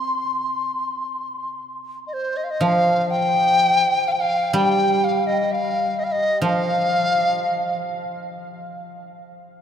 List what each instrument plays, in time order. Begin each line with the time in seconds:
Already playing: dizi C6
2.07 dizi D#5
2.13 dizi C5
2.37 dizi D#5
2.44 dizi F5
2.50 dizi D#5
2.61 guzheng F3, dizi F5
3.10 dizi G5
4.08 dizi F5 G5
4.20 dizi F5
4.53 guzheng G3, dizi G5
5.04 dizi F5
5.27 dizi D#5
5.52 dizi F5
5.99 dizi D#5
6.04 dizi F5
6.12 dizi D#5
6.42 guzheng F3, dizi F5